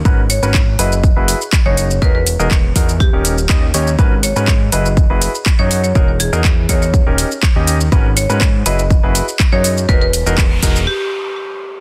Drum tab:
HH |--o---o---o---o-|--o---o---o---o-|--o---o---o---o-|--o---o---o---o-|
SH |x-xxx-xxx-xxx-xx|x-xxx-xxx-xxx-xx|x-xxx-xxx-xxx-xx|x-xxx-xxx-xxx-xx|
CP |----x-------x---|----x-------x---|----x-------x---|----x-------x---|
BD |o---o---o---o---|o---o-o-o---o---|o---o---o---o---|o---o-o-o---o---|

HH |--o---o---o---o-|--o---o---------|
SH |x-xxx-xxx-xxx-xx|x-xxx-xx--------|
CP |----x-------x---|----x-----------|
BD |o---o---o---o---|o---o-o---------|